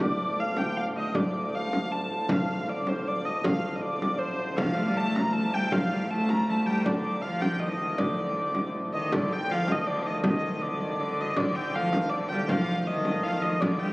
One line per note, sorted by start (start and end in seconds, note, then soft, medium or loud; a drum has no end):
0.00 4.57 D2 medium
0.00 4.57 A2 medium
0.00 0.40 D5 medium
0.40 0.58 F5 medium
0.57 0.77 G5 medium
0.57 frame drum medium
0.77 0.85 F5 medium
0.97 1.15 D#5 medium
1.15 1.55 D5 medium
1.15 frame drum medium
1.55 1.92 F5 medium
1.73 frame drum medium
1.92 2.32 A5 medium
2.29 2.69 F5 medium
2.29 frame drum medium
2.69 2.88 D5 medium
2.87 3.08 C5 medium
2.87 frame drum medium
3.08 3.25 D5 medium
3.25 3.45 D#5 medium
3.44 3.76 F5 loud
3.44 frame drum medium
3.76 3.82 D#5 medium
3.82 4.20 D5 medium
4.02 frame drum medium
4.19 4.57 C5 medium
4.19 frame drum soft
4.41 frame drum soft
4.57 9.11 D2 medium
4.57 9.11 A2 medium
4.57 4.77 F3 medium
4.57 4.97 F5 medium
4.57 frame drum medium
4.75 4.79 G3 medium
4.75 4.86 A3 medium
4.85 4.94 G3 medium
4.94 5.30 A3 medium
4.94 5.15 A5 loud
5.15 5.33 A#5 loud
5.15 frame drum medium
5.33 5.53 A3 medium
5.33 5.54 A5 loud
5.52 5.70 G3 medium
5.52 5.72 G5 loud
5.71 5.89 F3 medium
5.71 6.10 F5 loud
5.71 frame drum medium
5.89 6.07 G3 medium
6.08 6.44 A3 medium
6.08 6.30 A5 loud
6.29 6.50 A#5 loud
6.29 frame drum medium
6.48 6.64 A3 medium
6.48 6.66 A5 medium
6.65 6.86 G3 medium
6.65 6.85 G5 medium
6.85 7.23 D3 medium
6.85 7.22 D5 medium
6.85 frame drum medium
7.22 7.64 F3 medium
7.22 7.41 F5 medium
7.41 7.60 G5 loud
7.41 frame drum medium
7.60 7.80 D#3 medium
7.60 7.98 D#5 medium
7.80 8.02 D#3 medium
7.98 8.75 D3 medium
7.98 8.69 D5 medium
7.98 frame drum medium
8.18 frame drum soft
8.36 frame drum soft
8.55 frame drum medium
8.74 frame drum soft
8.93 9.14 D#3 medium
8.93 9.13 D#5 medium
9.12 13.62 D2 medium
9.12 13.61 A2 medium
9.12 9.48 D3 medium
9.12 9.33 D5 loud
9.12 frame drum medium
9.33 9.52 G5 loud
9.48 9.66 F3 medium
9.48 9.72 F5 loud
9.67 9.85 D#3 medium
9.67 frame drum medium
9.72 9.89 D#5 loud
9.87 10.03 D3 medium
9.87 10.07 D5 medium
10.02 10.08 F3 medium
10.02 frame drum soft
10.06 10.24 D#3 medium
10.06 10.15 D#5 loud
10.24 10.65 D#3 medium
10.24 10.62 D#5 medium
10.24 frame drum medium
10.62 10.82 D3 medium
10.62 11.00 D5 loud
10.81 11.02 D#3 medium
11.00 11.37 D3 medium
11.00 11.21 D5 medium
11.21 11.37 D#5 medium
11.37 11.76 D3 medium
11.37 11.55 D5 loud
11.37 frame drum medium
11.55 11.76 G5 loud
11.75 11.96 F3 medium
11.75 12.12 F5 loud
11.93 12.14 D#3 medium
11.93 frame drum medium
12.10 12.31 D3 medium
12.10 12.29 D5 medium
12.29 12.42 G3 medium
12.29 12.49 G5 loud
12.29 frame drum soft
12.45 12.52 G3 medium
12.49 12.86 F3 medium
12.49 12.87 F5 loud
12.49 frame drum medium
12.87 13.26 D#3 medium
12.87 13.23 D#5 medium
13.05 frame drum medium
13.23 13.32 F3 medium
13.23 13.42 F5 loud
13.31 13.35 D#3 medium
13.31 13.44 F3 medium
13.42 13.61 D#3 medium
13.42 13.61 D#5 medium
13.60 13.93 D2 medium
13.60 13.93 A2 medium
13.60 13.83 D3 medium
13.60 13.79 D5 medium
13.60 frame drum medium
13.79 13.93 G3 medium
13.79 13.93 G5 loud